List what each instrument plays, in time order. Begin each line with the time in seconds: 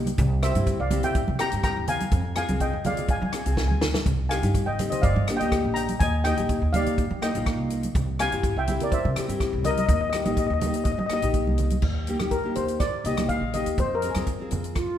Already playing: upright bass C2
0.07 closed hi-hat, high conga
0.18 upright bass C2, kick, closed hi-hat
0.43 nylon-string guitar C4 E4 G4, steel pan C5 E5, cross-stick, closed hi-hat
0.55 upright bass G2, nylon-string guitar C4 E4 G4, closed hi-hat, high conga
0.67 kick, closed hi-hat
0.80 upright bass C2, steel pan D5 F5
0.91 nylon-string guitar C4 E4 G4, closed hi-hat, high conga, low conga
1.03 steel pan E5 G5, closed hi-hat, low conga
1.15 kick, closed hi-hat
1.28 upright bass C3, high conga
1.39 nylon-string guitar C4 E4 G4, steel pan G5 A#5, cross-stick, closed hi-hat
1.52 upright bass G2, nylon-string guitar C4 E4 G4, closed hi-hat
1.63 steel pan G5 A#5, kick, cross-stick, closed hi-hat
1.77 upright bass E2
1.87 steel pan F5 G#5, closed hi-hat, low conga
2.00 closed hi-hat, high conga
2.11 upright bass F2, kick, closed hi-hat
2.35 nylon-string guitar C4 F4 G#4, steel pan F5 G#5, cross-stick, closed hi-hat
2.48 upright bass C2, nylon-string guitar C4 F4 G#4, closed hi-hat, high conga
2.60 steel pan D#5 G5, kick, closed hi-hat
2.73 upright bass F2
2.84 nylon-string guitar C4 F4 G#4, steel pan D5 F5, closed hi-hat, high conga, low conga
2.97 closed hi-hat, low conga
3.08 steel pan F5 G#5, kick, closed hi-hat
3.17 steel pan G#5
3.22 upright bass F3, steel pan G#5, high conga
3.32 nylon-string guitar C4 F4 G#4, steel pan G#5, cross-stick, closed hi-hat
3.39 steel pan G#5
3.45 upright bass C2, nylon-string guitar C4 F4 G#4, steel pan G#5, closed hi-hat
3.53 steel pan G#5
3.57 steel pan G#5, kick, snare
3.68 upright bass D2, steel pan G#5, high conga
3.81 snare, low conga
3.94 snare, high conga
4.06 upright bass C2, kick, closed hi-hat
4.29 nylon-string guitar C4 D#4 G4, steel pan F5 G#5, cross-stick, closed hi-hat
4.42 upright bass G2, nylon-string guitar C4 D#4 G4, closed hi-hat, high conga
4.54 kick, closed hi-hat
4.66 upright bass G#1, steel pan D#5 G5
4.79 nylon-string guitar C4 D#4 G4, closed hi-hat, high conga, low conga
4.90 steel pan C5 D#5, closed hi-hat, low conga
5.02 upright bass G1, steel pan D5 F5, kick, closed hi-hat
5.16 upright bass G2, high conga
5.28 nylon-string guitar A#3 D4 G4, cross-stick, closed hi-hat
5.37 upright bass D2, nylon-string guitar A#3, steel pan D#5 G5, closed hi-hat
5.41 nylon-string guitar D3 G4
5.52 kick, cross-stick, closed hi-hat
5.65 upright bass A#1
5.74 steel pan G5 A#5, closed hi-hat
5.88 closed hi-hat, high conga
6.00 upright bass D#2, steel pan D#5 G#5, kick, closed hi-hat
6.24 nylon-string guitar A#3 D#4 G4, steel pan D#5 G5, cross-stick, closed hi-hat
6.37 upright bass A#1, nylon-string guitar A#3 D#4 G4, closed hi-hat, high conga
6.49 kick, closed hi-hat
6.62 upright bass D#2
6.73 nylon-string guitar A#3 D#4 G4, steel pan D5 F5, closed hi-hat, high conga, low conga
6.86 closed hi-hat, low conga
6.98 kick, closed hi-hat
7.10 upright bass D#3, high conga
7.22 nylon-string guitar A#3 D#4 G4, steel pan D#5 G5, cross-stick, closed hi-hat
7.35 upright bass A#1, nylon-string guitar A#3 D#4 F4, closed hi-hat
7.46 kick, cross-stick, closed hi-hat
7.59 upright bass C2
7.70 closed hi-hat
7.83 closed hi-hat, high conga
7.95 upright bass C2, kick, closed hi-hat
8.19 nylon-string guitar C4 E4 G4, steel pan F5 G#5, cross-stick, closed hi-hat
8.31 upright bass G2, nylon-string guitar C4 E4 G4, closed hi-hat
8.43 kick, closed hi-hat
8.56 upright bass C2, steel pan E5 G5
8.67 nylon-string guitar C4 E4 G4, closed hi-hat, high conga, low conga
8.80 steel pan A#4 D5, closed hi-hat, low conga
8.92 steel pan C5 E5, kick, closed hi-hat
9.05 upright bass C3, high conga
9.16 nylon-string guitar C4 E4 G4, cross-stick, closed hi-hat
9.28 upright bass G2, nylon-string guitar C4 E4 G4, closed hi-hat
9.40 kick, cross-stick, closed hi-hat
9.53 upright bass C2
9.64 steel pan A#4 D#5, closed hi-hat, low conga
9.71 steel pan D#5
9.77 steel pan D#5, closed hi-hat, high conga
9.86 upright bass D#2, steel pan D#5, kick, closed hi-hat
9.93 steel pan D#5
10.01 steel pan D#5
10.10 nylon-string guitar A#3 D#4, steel pan D#5, cross-stick, closed hi-hat
10.14 nylon-string guitar G4, steel pan D#5
10.25 upright bass A#1, nylon-string guitar A#3 D#4 G4, steel pan D#5, closed hi-hat, high conga
10.32 steel pan D#5
10.37 steel pan D#5, kick, closed hi-hat
10.47 upright bass D#2, steel pan D#5
10.54 steel pan D#5
10.60 nylon-string guitar A#3 D#4 G4, steel pan D#5, closed hi-hat, high conga, low conga
10.67 steel pan D#5
10.74 steel pan D#5, closed hi-hat
10.84 steel pan D#5, kick, closed hi-hat
10.92 steel pan D#5
10.98 upright bass D#3, steel pan D#5, high conga
11.06 nylon-string guitar A#3, steel pan D#5, cross-stick, closed hi-hat
11.11 nylon-string guitar D#4 G4, steel pan D#5
11.22 upright bass A#1, nylon-string guitar A#3 D#4 G4, closed hi-hat
11.34 kick, closed hi-hat
11.47 upright bass C2, high conga
11.58 closed hi-hat, low conga
11.70 closed hi-hat, high conga
11.82 upright bass D#2, kick, crash
12.07 nylon-string guitar A#3 D#4 G4, closed hi-hat
12.19 upright bass D#2, nylon-string guitar A#3 D#4 G4, cross-stick, closed hi-hat, high conga
12.31 steel pan A#4, kick, closed hi-hat
12.44 nylon-string guitar A#3 D#4 G4
12.55 upright bass D#2, steel pan C5, closed hi-hat, low conga
12.68 closed hi-hat
12.80 steel pan D5, kick, cross-stick, closed hi-hat
13.04 upright bass C2, nylon-string guitar A#3 D#4 G4, steel pan D#5, closed hi-hat
13.17 nylon-string guitar A#3 D#4 G4, cross-stick, closed hi-hat, high conga, low conga
13.29 steel pan F5, kick, closed hi-hat
13.41 upright bass A#1
13.54 nylon-string guitar A#3 D#4 G4, steel pan D#5, closed hi-hat, low conga
13.66 upright bass D#2, closed hi-hat
13.78 upright bass F2, steel pan C5, kick, closed hi-hat
13.95 steel pan A#4
14.02 nylon-string guitar C4 F4 G#4, closed hi-hat
14.09 steel pan G#4
14.15 upright bass F2, nylon-string guitar C4 F4 A#4, cross-stick, closed hi-hat, high conga
14.27 kick, closed hi-hat
14.40 nylon-string guitar C4 F4 G#4
14.51 upright bass F2, closed hi-hat, low conga
14.64 closed hi-hat
14.75 flute F4, kick, cross-stick, closed hi-hat